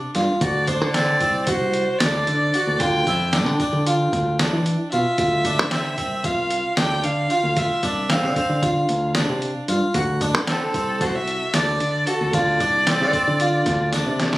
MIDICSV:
0, 0, Header, 1, 5, 480
1, 0, Start_track
1, 0, Key_signature, -1, "minor"
1, 0, Tempo, 530035
1, 377, Time_signature, 9, 3, 24, 8
1, 13022, End_track
2, 0, Start_track
2, 0, Title_t, "Violin"
2, 0, Program_c, 0, 40
2, 380, Note_on_c, 0, 74, 69
2, 612, Note_on_c, 0, 72, 73
2, 626, Note_off_c, 0, 74, 0
2, 841, Note_off_c, 0, 72, 0
2, 847, Note_on_c, 0, 74, 80
2, 1298, Note_off_c, 0, 74, 0
2, 1331, Note_on_c, 0, 72, 83
2, 1801, Note_on_c, 0, 74, 72
2, 1815, Note_off_c, 0, 72, 0
2, 2533, Note_on_c, 0, 79, 81
2, 2547, Note_off_c, 0, 74, 0
2, 3075, Note_off_c, 0, 79, 0
2, 4458, Note_on_c, 0, 76, 78
2, 5659, Note_on_c, 0, 77, 82
2, 5672, Note_off_c, 0, 76, 0
2, 6134, Note_off_c, 0, 77, 0
2, 6140, Note_on_c, 0, 79, 86
2, 6381, Note_on_c, 0, 77, 84
2, 6395, Note_off_c, 0, 79, 0
2, 6865, Note_on_c, 0, 76, 73
2, 6878, Note_off_c, 0, 77, 0
2, 7344, Note_on_c, 0, 77, 69
2, 7358, Note_off_c, 0, 76, 0
2, 7879, Note_off_c, 0, 77, 0
2, 9498, Note_on_c, 0, 69, 85
2, 9976, Note_on_c, 0, 72, 84
2, 9990, Note_off_c, 0, 69, 0
2, 10100, Note_on_c, 0, 76, 84
2, 10113, Note_off_c, 0, 72, 0
2, 10457, Note_on_c, 0, 74, 85
2, 10470, Note_off_c, 0, 76, 0
2, 10932, Note_on_c, 0, 69, 77
2, 10945, Note_off_c, 0, 74, 0
2, 11165, Note_on_c, 0, 74, 81
2, 11179, Note_off_c, 0, 69, 0
2, 12850, Note_off_c, 0, 74, 0
2, 13022, End_track
3, 0, Start_track
3, 0, Title_t, "Harpsichord"
3, 0, Program_c, 1, 6
3, 136, Note_on_c, 1, 65, 64
3, 348, Note_off_c, 1, 65, 0
3, 379, Note_on_c, 1, 66, 80
3, 589, Note_off_c, 1, 66, 0
3, 619, Note_on_c, 1, 62, 63
3, 830, Note_off_c, 1, 62, 0
3, 862, Note_on_c, 1, 60, 76
3, 1072, Note_off_c, 1, 60, 0
3, 1099, Note_on_c, 1, 60, 68
3, 1310, Note_off_c, 1, 60, 0
3, 1342, Note_on_c, 1, 66, 79
3, 1763, Note_off_c, 1, 66, 0
3, 1829, Note_on_c, 1, 62, 77
3, 2246, Note_off_c, 1, 62, 0
3, 2309, Note_on_c, 1, 66, 64
3, 2515, Note_off_c, 1, 66, 0
3, 2546, Note_on_c, 1, 65, 76
3, 2753, Note_off_c, 1, 65, 0
3, 2787, Note_on_c, 1, 64, 63
3, 2993, Note_off_c, 1, 64, 0
3, 3026, Note_on_c, 1, 62, 71
3, 3233, Note_off_c, 1, 62, 0
3, 3266, Note_on_c, 1, 62, 62
3, 3473, Note_off_c, 1, 62, 0
3, 3503, Note_on_c, 1, 65, 70
3, 3922, Note_off_c, 1, 65, 0
3, 3983, Note_on_c, 1, 62, 73
3, 4402, Note_off_c, 1, 62, 0
3, 4460, Note_on_c, 1, 65, 67
3, 4669, Note_off_c, 1, 65, 0
3, 4698, Note_on_c, 1, 65, 78
3, 4908, Note_off_c, 1, 65, 0
3, 4944, Note_on_c, 1, 62, 63
3, 5151, Note_off_c, 1, 62, 0
3, 5181, Note_on_c, 1, 60, 67
3, 5389, Note_off_c, 1, 60, 0
3, 5418, Note_on_c, 1, 60, 66
3, 5628, Note_off_c, 1, 60, 0
3, 5654, Note_on_c, 1, 65, 70
3, 6077, Note_off_c, 1, 65, 0
3, 6137, Note_on_c, 1, 62, 75
3, 6558, Note_off_c, 1, 62, 0
3, 6616, Note_on_c, 1, 65, 64
3, 6826, Note_off_c, 1, 65, 0
3, 6859, Note_on_c, 1, 65, 76
3, 7068, Note_off_c, 1, 65, 0
3, 7099, Note_on_c, 1, 62, 58
3, 7308, Note_off_c, 1, 62, 0
3, 7343, Note_on_c, 1, 60, 72
3, 7550, Note_off_c, 1, 60, 0
3, 7580, Note_on_c, 1, 60, 64
3, 7788, Note_off_c, 1, 60, 0
3, 7812, Note_on_c, 1, 65, 79
3, 8235, Note_off_c, 1, 65, 0
3, 8296, Note_on_c, 1, 62, 78
3, 8717, Note_off_c, 1, 62, 0
3, 8772, Note_on_c, 1, 65, 67
3, 8984, Note_off_c, 1, 65, 0
3, 9012, Note_on_c, 1, 66, 80
3, 9224, Note_off_c, 1, 66, 0
3, 9255, Note_on_c, 1, 62, 67
3, 9466, Note_off_c, 1, 62, 0
3, 9494, Note_on_c, 1, 60, 73
3, 9705, Note_off_c, 1, 60, 0
3, 9733, Note_on_c, 1, 60, 65
3, 9945, Note_off_c, 1, 60, 0
3, 9971, Note_on_c, 1, 66, 75
3, 10395, Note_off_c, 1, 66, 0
3, 10451, Note_on_c, 1, 62, 73
3, 10875, Note_off_c, 1, 62, 0
3, 10933, Note_on_c, 1, 66, 67
3, 11145, Note_off_c, 1, 66, 0
3, 11171, Note_on_c, 1, 65, 73
3, 11384, Note_off_c, 1, 65, 0
3, 11416, Note_on_c, 1, 62, 63
3, 11627, Note_off_c, 1, 62, 0
3, 11663, Note_on_c, 1, 60, 69
3, 11871, Note_off_c, 1, 60, 0
3, 11902, Note_on_c, 1, 60, 64
3, 12111, Note_off_c, 1, 60, 0
3, 12140, Note_on_c, 1, 65, 77
3, 12560, Note_off_c, 1, 65, 0
3, 12618, Note_on_c, 1, 62, 83
3, 13022, Note_off_c, 1, 62, 0
3, 13022, End_track
4, 0, Start_track
4, 0, Title_t, "Fingered electric bass"
4, 0, Program_c, 2, 33
4, 137, Note_on_c, 2, 43, 63
4, 240, Note_off_c, 2, 43, 0
4, 372, Note_on_c, 2, 38, 85
4, 738, Note_off_c, 2, 38, 0
4, 738, Note_on_c, 2, 50, 90
4, 1047, Note_off_c, 2, 50, 0
4, 1097, Note_on_c, 2, 36, 91
4, 1406, Note_off_c, 2, 36, 0
4, 1461, Note_on_c, 2, 36, 68
4, 1665, Note_off_c, 2, 36, 0
4, 1819, Note_on_c, 2, 38, 87
4, 2024, Note_off_c, 2, 38, 0
4, 2064, Note_on_c, 2, 50, 85
4, 2267, Note_off_c, 2, 50, 0
4, 2420, Note_on_c, 2, 38, 79
4, 2522, Note_off_c, 2, 38, 0
4, 2537, Note_on_c, 2, 38, 94
4, 2742, Note_off_c, 2, 38, 0
4, 2778, Note_on_c, 2, 41, 72
4, 3135, Note_off_c, 2, 41, 0
4, 3135, Note_on_c, 2, 50, 68
4, 3238, Note_off_c, 2, 50, 0
4, 3375, Note_on_c, 2, 50, 79
4, 3684, Note_off_c, 2, 50, 0
4, 3739, Note_on_c, 2, 38, 69
4, 4046, Note_off_c, 2, 38, 0
4, 4102, Note_on_c, 2, 52, 71
4, 4305, Note_off_c, 2, 52, 0
4, 4466, Note_on_c, 2, 47, 65
4, 4564, Note_off_c, 2, 47, 0
4, 4695, Note_on_c, 2, 38, 73
4, 5065, Note_off_c, 2, 38, 0
4, 5065, Note_on_c, 2, 50, 79
4, 5369, Note_off_c, 2, 50, 0
4, 5413, Note_on_c, 2, 36, 85
4, 5722, Note_off_c, 2, 36, 0
4, 5782, Note_on_c, 2, 36, 72
4, 5985, Note_off_c, 2, 36, 0
4, 6139, Note_on_c, 2, 38, 87
4, 6342, Note_off_c, 2, 38, 0
4, 6376, Note_on_c, 2, 50, 76
4, 6580, Note_off_c, 2, 50, 0
4, 6734, Note_on_c, 2, 38, 73
4, 6939, Note_off_c, 2, 38, 0
4, 7093, Note_on_c, 2, 36, 69
4, 7454, Note_on_c, 2, 50, 76
4, 7468, Note_off_c, 2, 36, 0
4, 7557, Note_off_c, 2, 50, 0
4, 7693, Note_on_c, 2, 50, 79
4, 8002, Note_off_c, 2, 50, 0
4, 8053, Note_on_c, 2, 38, 74
4, 8362, Note_off_c, 2, 38, 0
4, 8414, Note_on_c, 2, 48, 74
4, 8620, Note_off_c, 2, 48, 0
4, 8770, Note_on_c, 2, 43, 63
4, 8874, Note_off_c, 2, 43, 0
4, 9009, Note_on_c, 2, 38, 85
4, 9369, Note_off_c, 2, 38, 0
4, 9369, Note_on_c, 2, 50, 83
4, 9680, Note_off_c, 2, 50, 0
4, 9727, Note_on_c, 2, 36, 92
4, 10038, Note_off_c, 2, 36, 0
4, 10091, Note_on_c, 2, 36, 75
4, 10298, Note_off_c, 2, 36, 0
4, 10453, Note_on_c, 2, 38, 86
4, 10659, Note_off_c, 2, 38, 0
4, 10690, Note_on_c, 2, 50, 77
4, 10898, Note_off_c, 2, 50, 0
4, 11056, Note_on_c, 2, 38, 79
4, 11158, Note_off_c, 2, 38, 0
4, 11175, Note_on_c, 2, 38, 95
4, 11381, Note_off_c, 2, 38, 0
4, 11411, Note_on_c, 2, 36, 75
4, 11783, Note_on_c, 2, 50, 72
4, 11796, Note_off_c, 2, 36, 0
4, 11882, Note_off_c, 2, 50, 0
4, 12022, Note_on_c, 2, 50, 80
4, 12328, Note_off_c, 2, 50, 0
4, 12375, Note_on_c, 2, 38, 76
4, 12684, Note_off_c, 2, 38, 0
4, 12735, Note_on_c, 2, 48, 68
4, 12941, Note_off_c, 2, 48, 0
4, 13022, End_track
5, 0, Start_track
5, 0, Title_t, "Drums"
5, 133, Note_on_c, 9, 38, 32
5, 133, Note_on_c, 9, 42, 51
5, 224, Note_off_c, 9, 38, 0
5, 224, Note_off_c, 9, 42, 0
5, 373, Note_on_c, 9, 36, 100
5, 373, Note_on_c, 9, 42, 75
5, 464, Note_off_c, 9, 36, 0
5, 464, Note_off_c, 9, 42, 0
5, 611, Note_on_c, 9, 42, 57
5, 613, Note_on_c, 9, 36, 67
5, 702, Note_off_c, 9, 42, 0
5, 704, Note_off_c, 9, 36, 0
5, 854, Note_on_c, 9, 38, 81
5, 854, Note_on_c, 9, 42, 66
5, 944, Note_off_c, 9, 38, 0
5, 944, Note_off_c, 9, 42, 0
5, 1091, Note_on_c, 9, 42, 54
5, 1094, Note_on_c, 9, 36, 67
5, 1181, Note_off_c, 9, 42, 0
5, 1185, Note_off_c, 9, 36, 0
5, 1329, Note_on_c, 9, 42, 77
5, 1333, Note_on_c, 9, 36, 93
5, 1420, Note_off_c, 9, 42, 0
5, 1424, Note_off_c, 9, 36, 0
5, 1571, Note_on_c, 9, 42, 59
5, 1662, Note_off_c, 9, 42, 0
5, 1815, Note_on_c, 9, 38, 91
5, 1815, Note_on_c, 9, 42, 71
5, 1906, Note_off_c, 9, 38, 0
5, 1906, Note_off_c, 9, 42, 0
5, 2058, Note_on_c, 9, 42, 57
5, 2148, Note_off_c, 9, 42, 0
5, 2299, Note_on_c, 9, 42, 51
5, 2390, Note_off_c, 9, 42, 0
5, 2535, Note_on_c, 9, 42, 71
5, 2536, Note_on_c, 9, 36, 91
5, 2625, Note_off_c, 9, 42, 0
5, 2627, Note_off_c, 9, 36, 0
5, 2778, Note_on_c, 9, 36, 66
5, 2779, Note_on_c, 9, 42, 51
5, 2868, Note_off_c, 9, 36, 0
5, 2870, Note_off_c, 9, 42, 0
5, 3014, Note_on_c, 9, 38, 77
5, 3014, Note_on_c, 9, 42, 64
5, 3105, Note_off_c, 9, 38, 0
5, 3105, Note_off_c, 9, 42, 0
5, 3257, Note_on_c, 9, 36, 59
5, 3258, Note_on_c, 9, 42, 47
5, 3348, Note_off_c, 9, 36, 0
5, 3348, Note_off_c, 9, 42, 0
5, 3500, Note_on_c, 9, 42, 68
5, 3591, Note_off_c, 9, 42, 0
5, 3738, Note_on_c, 9, 36, 69
5, 3741, Note_on_c, 9, 42, 54
5, 3828, Note_off_c, 9, 36, 0
5, 3832, Note_off_c, 9, 42, 0
5, 3980, Note_on_c, 9, 38, 81
5, 3980, Note_on_c, 9, 42, 61
5, 4070, Note_off_c, 9, 38, 0
5, 4070, Note_off_c, 9, 42, 0
5, 4219, Note_on_c, 9, 42, 50
5, 4310, Note_off_c, 9, 42, 0
5, 4455, Note_on_c, 9, 42, 51
5, 4546, Note_off_c, 9, 42, 0
5, 4691, Note_on_c, 9, 42, 71
5, 4694, Note_on_c, 9, 36, 102
5, 4782, Note_off_c, 9, 42, 0
5, 4785, Note_off_c, 9, 36, 0
5, 4933, Note_on_c, 9, 42, 59
5, 4934, Note_on_c, 9, 36, 66
5, 5024, Note_off_c, 9, 42, 0
5, 5025, Note_off_c, 9, 36, 0
5, 5172, Note_on_c, 9, 38, 85
5, 5172, Note_on_c, 9, 42, 63
5, 5263, Note_off_c, 9, 38, 0
5, 5263, Note_off_c, 9, 42, 0
5, 5413, Note_on_c, 9, 42, 49
5, 5414, Note_on_c, 9, 36, 64
5, 5504, Note_off_c, 9, 36, 0
5, 5504, Note_off_c, 9, 42, 0
5, 5652, Note_on_c, 9, 42, 80
5, 5654, Note_on_c, 9, 36, 98
5, 5743, Note_off_c, 9, 42, 0
5, 5744, Note_off_c, 9, 36, 0
5, 5891, Note_on_c, 9, 42, 64
5, 5982, Note_off_c, 9, 42, 0
5, 6131, Note_on_c, 9, 38, 86
5, 6131, Note_on_c, 9, 42, 68
5, 6222, Note_off_c, 9, 38, 0
5, 6222, Note_off_c, 9, 42, 0
5, 6372, Note_on_c, 9, 42, 54
5, 6462, Note_off_c, 9, 42, 0
5, 6612, Note_on_c, 9, 42, 52
5, 6702, Note_off_c, 9, 42, 0
5, 6851, Note_on_c, 9, 42, 69
5, 6852, Note_on_c, 9, 36, 91
5, 6942, Note_off_c, 9, 42, 0
5, 6943, Note_off_c, 9, 36, 0
5, 7090, Note_on_c, 9, 42, 55
5, 7092, Note_on_c, 9, 36, 66
5, 7181, Note_off_c, 9, 42, 0
5, 7183, Note_off_c, 9, 36, 0
5, 7332, Note_on_c, 9, 38, 82
5, 7332, Note_on_c, 9, 42, 58
5, 7422, Note_off_c, 9, 38, 0
5, 7422, Note_off_c, 9, 42, 0
5, 7572, Note_on_c, 9, 36, 65
5, 7574, Note_on_c, 9, 42, 50
5, 7662, Note_off_c, 9, 36, 0
5, 7664, Note_off_c, 9, 42, 0
5, 7811, Note_on_c, 9, 36, 94
5, 7813, Note_on_c, 9, 42, 70
5, 7902, Note_off_c, 9, 36, 0
5, 7904, Note_off_c, 9, 42, 0
5, 8049, Note_on_c, 9, 42, 52
5, 8139, Note_off_c, 9, 42, 0
5, 8284, Note_on_c, 9, 38, 86
5, 8284, Note_on_c, 9, 42, 67
5, 8374, Note_off_c, 9, 38, 0
5, 8374, Note_off_c, 9, 42, 0
5, 8530, Note_on_c, 9, 42, 49
5, 8621, Note_off_c, 9, 42, 0
5, 8769, Note_on_c, 9, 42, 57
5, 8859, Note_off_c, 9, 42, 0
5, 9005, Note_on_c, 9, 42, 65
5, 9008, Note_on_c, 9, 36, 98
5, 9095, Note_off_c, 9, 42, 0
5, 9098, Note_off_c, 9, 36, 0
5, 9246, Note_on_c, 9, 42, 50
5, 9247, Note_on_c, 9, 36, 65
5, 9336, Note_off_c, 9, 42, 0
5, 9338, Note_off_c, 9, 36, 0
5, 9486, Note_on_c, 9, 38, 84
5, 9486, Note_on_c, 9, 42, 68
5, 9576, Note_off_c, 9, 38, 0
5, 9576, Note_off_c, 9, 42, 0
5, 9728, Note_on_c, 9, 36, 60
5, 9728, Note_on_c, 9, 42, 51
5, 9818, Note_off_c, 9, 36, 0
5, 9819, Note_off_c, 9, 42, 0
5, 9969, Note_on_c, 9, 36, 96
5, 9970, Note_on_c, 9, 38, 28
5, 9970, Note_on_c, 9, 42, 75
5, 10059, Note_off_c, 9, 36, 0
5, 10060, Note_off_c, 9, 38, 0
5, 10060, Note_off_c, 9, 42, 0
5, 10211, Note_on_c, 9, 42, 55
5, 10301, Note_off_c, 9, 42, 0
5, 10448, Note_on_c, 9, 38, 82
5, 10448, Note_on_c, 9, 42, 75
5, 10539, Note_off_c, 9, 38, 0
5, 10539, Note_off_c, 9, 42, 0
5, 10690, Note_on_c, 9, 42, 56
5, 10780, Note_off_c, 9, 42, 0
5, 10930, Note_on_c, 9, 42, 55
5, 11021, Note_off_c, 9, 42, 0
5, 11170, Note_on_c, 9, 42, 74
5, 11171, Note_on_c, 9, 36, 95
5, 11260, Note_off_c, 9, 42, 0
5, 11262, Note_off_c, 9, 36, 0
5, 11412, Note_on_c, 9, 36, 69
5, 11414, Note_on_c, 9, 42, 53
5, 11503, Note_off_c, 9, 36, 0
5, 11505, Note_off_c, 9, 42, 0
5, 11654, Note_on_c, 9, 38, 82
5, 11654, Note_on_c, 9, 42, 64
5, 11744, Note_off_c, 9, 38, 0
5, 11744, Note_off_c, 9, 42, 0
5, 11893, Note_on_c, 9, 36, 67
5, 11893, Note_on_c, 9, 42, 50
5, 11984, Note_off_c, 9, 36, 0
5, 11984, Note_off_c, 9, 42, 0
5, 12133, Note_on_c, 9, 42, 70
5, 12224, Note_off_c, 9, 42, 0
5, 12370, Note_on_c, 9, 38, 30
5, 12370, Note_on_c, 9, 42, 57
5, 12373, Note_on_c, 9, 36, 73
5, 12461, Note_off_c, 9, 38, 0
5, 12461, Note_off_c, 9, 42, 0
5, 12464, Note_off_c, 9, 36, 0
5, 12611, Note_on_c, 9, 38, 47
5, 12611, Note_on_c, 9, 42, 67
5, 12702, Note_off_c, 9, 38, 0
5, 12702, Note_off_c, 9, 42, 0
5, 12855, Note_on_c, 9, 38, 66
5, 12855, Note_on_c, 9, 42, 49
5, 12946, Note_off_c, 9, 38, 0
5, 12946, Note_off_c, 9, 42, 0
5, 12976, Note_on_c, 9, 38, 64
5, 13022, Note_off_c, 9, 38, 0
5, 13022, End_track
0, 0, End_of_file